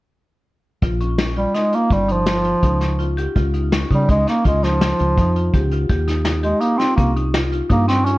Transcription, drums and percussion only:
0.82 kick medium
0.82 closed hi-hat medium
1.00 closed hi-hat medium
1.18 snare medium
1.18 closed hi-hat medium
1.36 closed hi-hat medium
1.55 snare soft
1.55 closed hi-hat medium
1.73 closed hi-hat medium
1.91 kick medium
1.91 closed hi-hat medium
2.09 closed hi-hat medium
2.26 snare medium
2.26 closed hi-hat medium
2.45 closed hi-hat soft
2.63 kick medium
2.63 closed hi-hat medium
2.81 snare soft
2.81 closed hi-hat soft
3.00 closed hi-hat medium
3.18 closed hi-hat soft
3.36 kick medium
3.36 closed hi-hat medium
3.54 closed hi-hat soft
3.72 snare medium
3.72 closed hi-hat medium
3.90 kick medium
3.90 closed hi-hat medium
4.09 kick medium
4.09 closed hi-hat medium
4.27 snare soft
4.27 closed hi-hat medium
4.45 kick medium
4.45 closed hi-hat medium
4.63 snare soft
4.63 closed hi-hat medium
4.81 snare medium
4.81 closed hi-hat medium
4.99 closed hi-hat medium
5.17 kick medium
5.17 closed hi-hat medium
5.36 closed hi-hat medium
5.54 kick medium
5.54 closed hi-hat medium
5.71 closed hi-hat medium
5.89 kick loud
5.89 closed hi-hat medium
6.08 snare soft
6.08 closed hi-hat soft
6.25 snare medium
6.25 closed hi-hat medium
6.43 closed hi-hat soft
6.61 closed hi-hat medium
6.80 snare soft
6.80 closed hi-hat soft
6.98 kick medium
6.98 closed hi-hat medium
7.17 closed hi-hat medium
7.34 snare medium
7.34 closed hi-hat medium
7.53 closed hi-hat medium
7.70 kick medium
7.70 closed hi-hat medium
7.89 snare soft
7.89 closed hi-hat medium
8.06 closed hi-hat medium

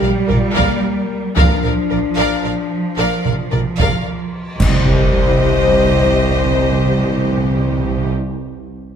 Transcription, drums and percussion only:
0.03 taiko low-mid medium
0.30 taiko low-mid medium
0.57 taiko medium
1.37 taiko loud
3.26 taiko low-mid medium
3.53 taiko low-mid medium
3.80 taiko medium
4.60 concert bass drum medium
4.60 crash medium

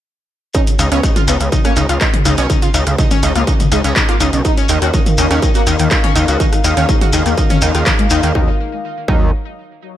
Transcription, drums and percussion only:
0.54 kick loud
0.54 closed hi-hat medium
0.54 shekere medium
0.67 closed hi-hat medium
0.67 shekere soft
0.79 open hi-hat loud
0.79 shekere medium
0.92 closed hi-hat medium
0.92 shekere soft
1.03 kick loud
1.03 cross-stick soft
1.03 closed hi-hat medium
1.03 shekere medium
1.16 closed hi-hat medium
1.16 mid tom medium
1.16 shekere soft
1.28 open hi-hat medium
1.28 shekere medium
1.40 closed hi-hat medium
1.40 shekere soft
1.52 kick loud
1.52 closed hi-hat medium
1.52 shekere medium
1.64 cross-stick medium
1.64 closed hi-hat medium
1.64 shekere soft
1.76 open hi-hat loud
1.76 shekere medium
1.89 closed hi-hat medium
1.89 shekere soft
2.01 kick loud
2.01 clap loud
2.01 closed hi-hat medium
2.01 shekere medium
2.14 closed hi-hat medium
2.14 mid tom medium
2.25 cross-stick medium
2.25 open hi-hat medium
2.25 shekere medium
2.37 closed hi-hat medium
2.37 shekere soft
2.50 kick loud
2.50 closed hi-hat medium
2.50 shekere medium
2.62 closed hi-hat medium
2.62 shekere soft
2.74 open hi-hat loud
2.74 shekere loud
2.87 cross-stick medium
2.87 closed hi-hat medium
2.87 shekere soft
2.98 kick loud
2.98 closed hi-hat medium
2.98 shekere medium
3.11 closed hi-hat medium
3.11 mid tom medium
3.11 shekere soft
3.23 open hi-hat loud
3.23 shekere medium
3.36 closed hi-hat medium
3.36 shekere soft
3.47 kick loud
3.47 cross-stick medium
3.47 closed hi-hat medium
3.47 shekere soft
3.60 closed hi-hat medium
3.60 mid tom medium
3.60 shekere soft
3.72 open hi-hat loud
3.72 shekere medium
3.84 closed hi-hat medium
3.84 shekere soft
3.96 kick loud
3.96 clap loud
3.96 closed hi-hat medium
3.96 shekere medium
4.09 cross-stick medium
4.09 closed hi-hat medium
4.20 open hi-hat loud
4.20 shekere loud
4.33 closed hi-hat medium
4.33 shekere soft
4.45 kick loud
4.45 closed hi-hat medium
4.45 shekere medium
4.57 closed hi-hat medium
4.57 shekere soft
4.69 cross-stick medium
4.69 open hi-hat loud
4.69 shekere loud
4.82 closed hi-hat medium
4.82 shekere soft
4.94 kick loud
4.94 closed hi-hat medium
4.94 shekere medium
5.06 closed hi-hat medium
5.06 mid tom medium
5.06 shekere soft
5.18 open hi-hat loud
5.18 shekere loud
5.31 cross-stick medium
5.31 closed hi-hat medium
5.31 shekere soft
5.42 kick loud
5.42 closed hi-hat medium
5.42 shekere medium
5.55 closed hi-hat medium
5.55 shekere soft
5.67 open hi-hat loud
5.67 shekere loud
5.79 closed hi-hat medium
5.79 shekere soft
5.91 kick loud
5.91 cross-stick medium
5.91 clap loud
5.91 closed hi-hat medium
5.91 shekere medium
6.04 closed hi-hat medium
6.04 mid tom medium
6.16 open hi-hat loud
6.16 shekere medium
6.28 closed hi-hat medium
6.28 shekere soft
6.40 kick loud
6.40 closed hi-hat medium
6.40 shekere medium
6.53 cross-stick medium
6.53 closed hi-hat medium
6.53 shekere soft
6.64 open hi-hat loud
6.64 shekere medium
6.77 closed hi-hat medium
6.77 shekere soft
6.89 kick loud
6.89 closed hi-hat medium
6.89 shekere medium
7.01 closed hi-hat medium
7.01 mid tom medium
7.01 shekere soft
7.13 cross-stick medium
7.13 open hi-hat loud
7.13 shekere loud
7.26 closed hi-hat medium
7.26 shekere soft
7.38 kick loud
7.38 closed hi-hat medium
7.38 shekere medium
7.50 closed hi-hat medium
7.50 mid tom medium
7.50 shekere soft
7.61 open hi-hat loud
7.61 shekere loud
7.74 cross-stick medium
7.74 closed hi-hat medium
7.74 shekere soft
7.86 kick loud
7.86 clap loud
7.86 closed hi-hat medium
7.86 shekere medium
7.99 closed hi-hat medium
8.10 open hi-hat loud
8.10 shekere medium
8.23 closed hi-hat medium
8.23 shekere soft
8.35 kick loud
9.08 kick loud

